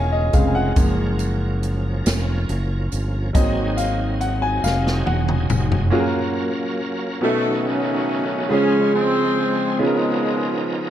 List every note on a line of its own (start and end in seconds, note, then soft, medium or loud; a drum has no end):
0.00 0.31 E1 medium
0.00 0.33 C#3 soft
0.00 0.73 C#3 medium
0.00 0.33 G#3 soft
0.00 0.73 G#3 medium
0.00 0.34 C4 medium
0.00 0.73 F4 medium
0.00 0.73 A#4 medium
0.00 0.79 C#5 medium
0.00 0.12 D#5 medium
0.00 0.34 F5 medium
0.00 0.11 G#5 medium
0.12 0.35 D#5 medium
0.33 0.73 F1 medium
0.33 0.73 C#3 soft
0.33 0.73 G#3 soft
0.33 0.73 C4 soft
0.33 0.47 F5 medium
0.33 kick medium
0.33 closed hi-hat soft
0.33 tambourine soft
0.47 0.55 G#5 medium
0.55 2.66 F#5 medium
0.76 2.02 F#1 medium
0.76 2.01 F3 medium
0.76 3.30 F3 medium
0.76 2.02 G#3 soft
0.76 2.02 A#3 medium
0.76 3.31 C#4 medium
0.76 3.31 A#4 medium
0.76 kick loud
0.76 closed hi-hat medium
0.76 tambourine medium
1.19 closed hi-hat medium
1.19 tambourine medium
1.63 closed hi-hat soft
2.06 2.46 F1 medium
2.06 snare loud
2.06 closed hi-hat medium
2.06 tambourine medium
2.49 2.89 F#1 medium
2.49 closed hi-hat soft
2.92 3.32 G1 medium
2.92 closed hi-hat medium
2.92 tambourine soft
3.33 4.60 G#1 loud
3.33 3.91 F#3 medium
3.33 5.89 F#3 medium
3.33 3.92 A#3 soft
3.33 3.92 C4 medium
3.33 5.89 C4 medium
3.33 5.89 D#4 medium
3.33 5.89 G#4 medium
3.33 3.79 D#5 medium
3.33 kick loud
3.33 closed hi-hat medium
3.33 tambourine medium
3.77 4.22 F5 medium
3.77 closed hi-hat medium
3.77 tambourine medium
4.21 4.43 F#5 medium
4.21 closed hi-hat soft
4.42 4.47 G#5 medium
4.64 5.03 F1 medium
4.64 5.08 F5 medium
4.64 snare medium
4.64 tambourine medium
4.87 snare medium
5.06 5.47 E1 medium
5.06 5.88 F#5 medium
5.06 high tom medium
5.29 mid tom medium
5.50 5.90 F1 medium
5.50 mid tom medium
5.50 tambourine medium
5.72 floor tom medium
5.90 7.20 F#3 medium
5.90 7.08 A#3 medium
5.90 7.21 A#3 medium
5.90 7.20 C#4 medium
5.90 7.09 C#4 medium
5.90 7.09 F4 medium
5.90 7.10 F#4 medium
5.90 5.99 G#4 medium
5.90 7.21 A#4 medium
5.90 7.21 F5 medium
6.00 7.13 A#4 medium
7.21 8.46 B2 medium
7.21 8.47 C#3 medium
7.21 8.48 D#3 medium
7.21 8.50 F#3 medium
7.21 7.62 A3 loud
7.21 8.38 B3 medium
7.21 8.50 B3 medium
7.21 8.50 C#4 medium
7.21 8.38 C#4 medium
7.21 8.50 D#4 medium
7.21 8.39 D#4 medium
7.21 8.39 F#4 medium
7.21 8.50 A4 medium
7.21 8.39 A4 medium
7.65 8.48 F#3 medium
7.65 8.48 A3 medium
7.65 8.49 C#4 loud
8.49 9.67 C#3 medium
8.49 9.79 C#3 medium
8.49 9.77 F3 medium
8.49 9.66 G#3 medium
8.49 9.79 G#3 medium
8.49 8.90 C#4 loud
8.49 9.67 F4 medium
8.49 9.78 G#4 medium
8.49 9.68 G#4 medium
8.49 9.67 C5 medium
8.49 9.79 C5 medium
8.53 8.95 G#3 medium
8.94 9.77 G#3 medium
8.94 9.75 C4 loud
9.78 10.90 C#3 medium
9.78 10.90 F3 medium
9.78 10.76 G#3 medium
9.78 10.90 B3 medium
9.78 10.90 C#4 medium
9.78 10.90 D#4 medium
9.78 10.90 F4 medium
9.78 9.85 G#4 medium
9.78 9.86 G#4 medium
9.82 10.90 B2 medium
9.82 10.90 F3 medium
9.82 10.90 A#4 medium
9.87 10.90 A#4 medium